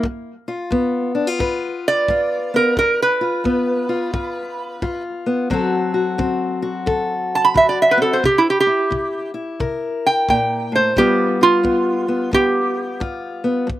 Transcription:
0.03 G2, kick
0.48 F4
0.70 G2 B3, kick
1.15 D4
1.27 F4
1.39 G2 B4, kick
1.88 D5
2.08 G2 F4, kick
2.54 B3 A#4
2.77 G2 A#4, kick
3.02 B4
3.21 F4
3.44 G2 B3, kick
3.89 F4
4.13 G2 F4, kick
4.82 G2 F4, kick
5.26 B3
5.50 D3 F#3 C4 F#4 A4, kick
5.94 F#4
6.18 D3 C4, kick
6.62 F#4
6.86 D3 A4, kick
7.35 A5
7.44 B5
7.54 D3 F#4 E5, kick
7.69 D5
7.82 E5
7.91 B4
7.97 C4
8.02 A4
8.13 C5
8.23 C3 G4, kick
8.38 E4
8.50 G4
8.60 G4
8.67 E4
8.90 C3, kick
9.34 E4
9.60 C3 A#4, kick
10.06 G5
10.29 A#2 G5, kick
10.72 A2 C5
10.96 G2 G3 B3 F4 G4, kick
11.41 F4
11.63 G2 B3, kick
12.08 B3
12.31 G2 B3 G4, kick
13.00 G2 F4, kick
13.44 B3
13.67 G2, kick

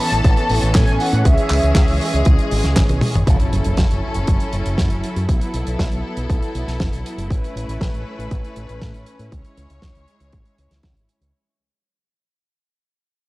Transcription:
Already playing: E3 B3 C#4 A4
0.00 A5
0.12 A1, closed hi-hat
0.24 A1, kick, closed hi-hat
0.37 closed hi-hat
0.49 A1, open hi-hat
0.62 A1, closed hi-hat
0.75 A2 G#5, kick, snare, clap, closed hi-hat
0.87 A1, closed hi-hat
1.00 F#5, open hi-hat
1.13 A2, closed hi-hat
1.25 C#2 G#3 G#4 E5, kick, closed hi-hat
1.38 closed hi-hat
1.50 C#2, clap, open hi-hat
1.63 C#2, closed hi-hat
1.75 C#2, kick, snare, clap, closed hi-hat
1.88 C#2, open hi-hat
2.01 open hi-hat
2.14 C#2, closed hi-hat
2.25 C#2, kick, closed hi-hat
2.39 closed hi-hat
2.51 G#1, open hi-hat
2.64 C#2, snare, closed hi-hat
2.76 G#1, kick, snare, clap, closed hi-hat, high tom
2.89 B1, closed hi-hat, high tom
3.01 open hi-hat, mid tom
3.14 G#1, closed hi-hat, mid tom
3.27 F#1 F#3 C#4 E4 A4, kick, closed hi-hat, impact
3.40 closed hi-hat
3.52 F#1, closed hi-hat
3.64 F#1, closed hi-hat
3.77 F#1, kick, snare, closed hi-hat
3.90 F#1, closed hi-hat
4.14 F#1, closed hi-hat
4.27 F#1, kick, closed hi-hat
4.40 closed hi-hat
4.53 F#1, closed hi-hat
4.66 F#1, closed hi-hat
4.78 F#2, kick, snare, closed hi-hat
4.90 F#1, closed hi-hat
5.04 closed hi-hat
5.16 F#2, closed hi-hat
5.28 B1 B3 A4, kick, closed hi-hat
5.41 closed hi-hat
5.54 B1, closed hi-hat
5.67 B1, closed hi-hat
5.79 B1, kick, snare, closed hi-hat
5.92 B1, closed hi-hat
6.17 B1, closed hi-hat
6.30 B1, kick, closed hi-hat
6.42 closed hi-hat
6.55 B1, closed hi-hat
6.67 B1, snare, closed hi-hat
6.80 F#1, kick, snare, closed hi-hat
6.93 B1, closed hi-hat
7.06 closed hi-hat
7.18 F#1, closed hi-hat
7.30 A1 A3 C#4 B4, kick, closed hi-hat
7.44 closed hi-hat
7.56 A1, closed hi-hat
7.68 A1, closed hi-hat
7.81 A1, kick, snare, closed hi-hat
7.93 A1, closed hi-hat
8.19 A1, closed hi-hat
8.31 A1, kick, closed hi-hat
8.45 closed hi-hat
8.56 A1, closed hi-hat
8.69 A1, closed hi-hat
8.82 A2, kick, snare, closed hi-hat
8.94 A1, closed hi-hat
9.06 closed hi-hat
9.19 A2, closed hi-hat
9.32 C#2 G#3 C#5, kick, closed hi-hat
9.44 closed hi-hat
9.57 C#2, closed hi-hat
9.70 C#2, closed hi-hat
9.82 C#2, kick, snare, closed hi-hat
9.95 C#2, closed hi-hat
10.08 closed hi-hat
10.20 C#2, closed hi-hat
10.32 G#1, kick, closed hi-hat
10.45 closed hi-hat
10.58 C#2, closed hi-hat
10.71 C#2, snare, closed hi-hat
10.83 C#2, kick, snare, closed hi-hat
10.96 G#1, closed hi-hat
11.09 closed hi-hat
11.21 C#2, closed hi-hat

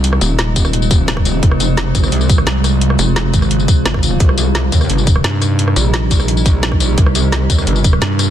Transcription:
Already playing: C2 C3 F3 G#3 D#4
0.04 closed hi-hat
0.13 cross-stick
0.21 D#1, closed hi-hat, tambourine
0.39 snare, closed hi-hat
0.56 kick, closed hi-hat, tambourine
0.65 cross-stick, tambourine
0.73 closed hi-hat
0.82 tambourine
0.91 kick, closed hi-hat, tambourine
1.08 snare, closed hi-hat
1.17 kick, cross-stick
1.25 closed hi-hat, tambourine
1.43 F1 F4, kick, closed hi-hat
1.51 cross-stick
1.60 closed hi-hat, tambourine
1.77 snare, closed hi-hat
1.95 G#1, kick, closed hi-hat, tambourine
2.03 cross-stick, tambourine
2.12 C2, closed hi-hat
2.21 tambourine
2.29 kick, closed hi-hat, tambourine
2.38 cross-stick
2.47 C2, snare, closed hi-hat
2.64 cross-stick, closed hi-hat, tambourine
2.81 closed hi-hat
2.90 cross-stick
2.99 F1, closed hi-hat, tambourine
3.16 snare, closed hi-hat
3.34 G#1, kick, closed hi-hat, tambourine
3.42 cross-stick, tambourine
3.51 closed hi-hat
3.60 tambourine
3.68 kick, closed hi-hat, tambourine
3.86 G#1, snare, closed hi-hat
3.94 kick, cross-stick
4.03 closed hi-hat, tambourine
4.20 C2 D#3 G3 D#4, kick, closed hi-hat
4.29 cross-stick
4.38 closed hi-hat, tambourine
4.55 snare, closed hi-hat
4.72 D#2, kick, closed hi-hat, tambourine
4.81 cross-stick, tambourine
4.90 G1, closed hi-hat
4.98 tambourine
5.07 kick, closed hi-hat, tambourine
5.16 cross-stick
5.24 G2, snare, closed hi-hat
5.42 cross-stick, closed hi-hat, tambourine
5.59 closed hi-hat
5.68 cross-stick
5.76 A#1, closed hi-hat, tambourine
5.94 snare, closed hi-hat
6.11 kick, closed hi-hat, tambourine
6.20 cross-stick, tambourine
6.28 closed hi-hat
6.37 tambourine
6.46 kick, closed hi-hat, tambourine
6.63 snare, closed hi-hat
6.72 kick, cross-stick
6.80 closed hi-hat, tambourine
6.98 C2 F4, kick, closed hi-hat
7.06 cross-stick
7.15 closed hi-hat, tambourine
7.32 snare, closed hi-hat
7.50 D#2, kick, closed hi-hat, tambourine
7.58 cross-stick, tambourine
7.67 G1, closed hi-hat
7.76 tambourine
7.84 kick, closed hi-hat, tambourine
7.93 cross-stick
8.02 G2, snare, closed hi-hat
8.19 cross-stick, closed hi-hat, tambourine

